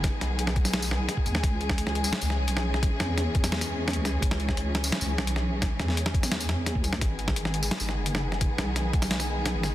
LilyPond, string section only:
\new Staff \with { instrumentName = "String section" } { \time 4/4 \key cis \dorian \tempo 4 = 172 << { <gis gis'>1~ | <gis gis'>1~ | <gis gis'>1~ | <gis gis'>1~ |
<gis gis'>1 | <gis gis'>1~ | <gis gis'>1 | } \\ { <dis b>1 | <e cis'>1~ | <e cis'>1~ | <e cis'>1~ |
<e cis'>1 | <dis b>1~ | <dis b>1 | } >> }